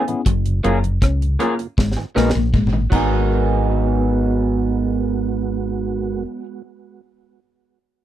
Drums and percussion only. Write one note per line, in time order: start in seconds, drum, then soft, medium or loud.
0.08 closed hi-hat medium
0.26 kick loud
0.26 closed hi-hat medium
0.46 closed hi-hat soft
0.64 closed hi-hat medium
0.84 closed hi-hat medium
1.02 kick loud
1.02 cross-stick medium
1.02 closed hi-hat medium
1.22 closed hi-hat soft
1.40 closed hi-hat medium
1.59 closed hi-hat soft
1.78 kick loud
1.78 snare medium
1.92 snare soft
2.17 snare medium
2.30 snare medium
2.54 kick loud
2.54 mid tom medium
2.67 mid tom medium
2.92 kick loud
2.92 crash medium